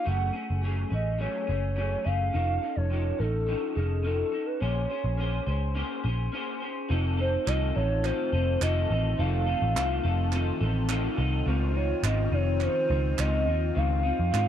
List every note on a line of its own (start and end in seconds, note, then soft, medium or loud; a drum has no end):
0.04 0.30 F#1 medium
0.04 0.34 F#3 medium
0.04 0.34 A3 medium
0.04 0.33 C#4 medium
0.04 0.32 G#4 medium
0.04 0.60 F#5 loud
0.33 0.62 A3 soft
0.33 0.63 C#4 soft
0.33 0.62 G#4 soft
0.50 0.84 F#1 medium
0.61 0.91 F#3 soft
0.61 0.92 A3 medium
0.61 0.91 C#4 medium
0.61 0.89 G#4 medium
0.90 1.26 A1 medium
0.90 1.18 A3 soft
0.90 1.19 C#4 soft
0.90 1.19 G#4 soft
0.90 1.19 D#5 medium
1.19 1.48 F#3 medium
1.19 1.48 A3 medium
1.19 1.48 C#4 medium
1.19 1.46 G#4 medium
1.19 2.06 C#5 loud
1.47 1.95 F#1 medium
1.47 1.75 A3 soft
1.47 1.77 C#4 soft
1.47 1.76 G#4 soft
1.76 2.05 F#3 soft
1.76 2.05 A3 medium
1.76 2.05 C#4 medium
1.76 2.03 G#4 medium
2.04 2.29 F#1 medium
2.04 2.33 A3 soft
2.04 2.32 C#4 soft
2.04 2.33 G#4 soft
2.04 2.77 F5 loud
2.33 2.57 F1 medium
2.33 2.62 F3 medium
2.33 2.62 C#4 medium
2.33 2.62 D#4 medium
2.33 2.60 A4 medium
2.61 2.90 C#4 soft
2.61 2.91 D#4 soft
2.61 2.90 A4 medium
2.75 3.11 F1 medium
2.75 3.20 C#5 loud
2.90 3.19 F3 medium
2.90 3.20 C#4 medium
2.90 3.19 D#4 medium
2.90 3.17 A4 medium
3.18 3.54 A1 medium
3.18 3.47 C#4 soft
3.18 3.47 D#4 soft
3.18 3.47 A4 soft
3.18 3.77 A4 loud
3.46 3.76 F3 medium
3.46 3.76 C#4 medium
3.46 3.76 D#4 medium
3.46 3.74 A4 medium
3.75 4.22 F1 medium
3.75 4.03 C#4 soft
3.75 4.04 D#4 soft
3.75 4.05 G#4 medium
3.75 4.04 A4 soft
4.03 4.33 F3 medium
4.03 4.33 C#4 medium
4.03 4.32 D#4 medium
4.03 4.48 A4 medium
4.03 4.31 A4 medium
4.32 4.60 C#4 soft
4.32 4.61 D#4 soft
4.32 4.61 A4 medium
4.46 4.62 B4 medium
4.60 4.85 A#1 medium
4.60 4.90 A#3 medium
4.60 4.90 C#4 medium
4.60 4.90 G#4 medium
4.60 4.88 C5 medium
4.60 6.32 C#5 medium
4.90 5.17 C#4 soft
4.90 5.18 G#4 soft
4.90 5.19 C5 soft
5.04 5.39 A#1 medium
5.17 5.47 A#3 medium
5.17 5.47 C#4 medium
5.17 5.47 G#4 medium
5.17 5.45 C5 medium
5.46 5.82 C#2 medium
5.46 5.74 C#4 soft
5.46 5.75 G#4 soft
5.46 5.75 C5 medium
5.75 6.04 A#3 medium
5.75 6.04 C#4 medium
5.75 6.04 G#4 medium
5.75 6.02 C5 medium
6.04 6.28 A#1 medium
6.04 6.32 C#4 soft
6.04 6.33 G#4 medium
6.04 6.33 C5 medium
6.32 6.61 A#3 medium
6.32 6.62 C#4 medium
6.32 6.61 G#4 medium
6.32 6.59 C5 medium
6.60 6.89 C#4 soft
6.60 6.90 G#4 soft
6.60 6.89 C5 medium
6.89 7.36 F1 loud
6.89 14.48 D#3 medium
6.89 7.18 F3 medium
6.89 11.43 A3 medium
6.89 7.18 C4 medium
6.89 7.18 D#4 medium
6.89 14.48 F4 medium
6.89 7.16 A4 medium
7.17 7.46 C4 soft
7.17 7.46 D#4 soft
7.17 7.46 A4 medium
7.17 7.49 C5 medium
7.46 7.70 C2 medium
7.46 7.75 F3 medium
7.46 7.76 C4 medium
7.46 7.75 D#4 medium
7.46 7.73 A4 medium
7.46 7.75 D#5 medium
7.46 clap medium
7.74 8.11 A1 medium
7.74 8.03 C4 soft
7.74 8.05 D#4 soft
7.74 8.04 A4 soft
7.74 8.06 C#5 loud
8.03 8.32 F3 medium
8.03 8.33 C4 medium
8.03 8.33 D#4 medium
8.03 8.31 A4 medium
8.03 8.62 C5 loud
8.03 clap medium
8.32 8.56 F1 medium
8.32 8.60 C4 soft
8.32 8.61 D#4 soft
8.32 8.61 A4 soft
8.61 8.84 F1 medium
8.61 8.90 F3 medium
8.61 8.90 C4 medium
8.61 8.91 D#4 medium
8.61 8.89 A4 loud
8.61 9.20 D#5 loud
8.61 clap medium
8.90 9.13 A1 medium
8.90 9.17 C4 soft
8.90 9.18 D#4 soft
8.90 9.18 A4 medium
9.17 9.53 F1 loud
9.17 9.47 F3 medium
9.17 9.47 C4 medium
9.17 9.47 D#4 medium
9.17 9.45 A4 medium
9.17 10.90 F5 loud
9.46 9.75 C4 soft
9.46 9.76 D#4 soft
9.46 9.75 A4 medium
9.62 9.76 A1 medium
9.75 9.99 C2 loud
9.75 10.04 F3 medium
9.75 10.05 C4 medium
9.75 10.04 D#4 medium
9.75 10.02 A4 medium
9.75 clap medium
10.03 10.50 F1 medium
10.03 10.32 C4 soft
10.03 10.33 D#4 medium
10.03 10.32 A4 medium
10.32 10.61 F3 medium
10.32 10.62 C4 medium
10.32 10.61 D#4 medium
10.32 10.59 A4 medium
10.32 clap medium
10.60 11.07 A1 medium
10.60 10.88 C4 medium
10.60 10.89 D#4 medium
10.60 10.89 A4 medium
10.89 11.18 F3 medium
10.89 11.18 C4 loud
10.89 11.19 D#4 loud
10.89 11.16 A4 loud
10.89 clap medium
11.18 11.41 C2 medium
11.18 11.46 C4 medium
11.18 11.47 D#4 medium
11.18 11.47 A4 medium
11.46 11.92 C#2 loud
11.46 11.75 C#3 medium
11.46 11.76 F3 medium
11.46 14.48 C4 medium
11.46 11.75 C4 medium
11.46 11.73 D#4 medium
11.74 12.03 F3 soft
11.74 12.04 C4 soft
11.74 12.03 D#4 medium
11.74 12.02 C#5 medium
12.03 12.27 G#1 medium
12.03 12.32 C#3 medium
12.03 12.33 F3 medium
12.03 12.32 C4 medium
12.03 12.31 D#4 medium
12.03 12.35 D#5 medium
12.03 clap medium
12.32 12.66 F1 loud
12.32 12.61 F3 soft
12.32 12.62 C4 soft
12.32 12.61 D#4 medium
12.32 12.64 C#5 loud
12.60 12.90 C#3 medium
12.60 12.90 F3 medium
12.60 12.89 C4 medium
12.60 12.87 D#4 medium
12.60 13.21 C5 loud
12.60 clap medium
12.88 13.13 C#2 loud
12.88 13.17 F3 soft
12.88 13.18 C4 medium
12.88 13.18 D#4 medium
13.17 13.48 C#2 medium
13.17 13.47 C#3 medium
13.17 13.47 F3 medium
13.17 13.46 C4 medium
13.17 13.45 D#4 loud
13.17 13.79 D#5 loud
13.17 clap medium
13.46 13.70 D#2 medium
13.46 13.74 F3 medium
13.46 13.74 C4 soft
13.46 13.75 D#4 medium
13.74 14.11 C#2 loud
13.74 14.04 C#3 medium
13.74 14.04 F3 medium
13.74 14.04 C4 medium
13.74 14.02 D#4 medium
13.74 14.48 F5 loud
14.03 14.31 F3 soft
14.03 14.32 C4 soft
14.03 14.32 D#4 medium
14.20 14.31 F2 medium
14.31 14.48 G#2 medium
14.31 14.48 C#3 medium
14.31 14.48 F3 medium
14.31 14.48 C4 medium
14.31 14.48 D#4 medium
14.31 clap medium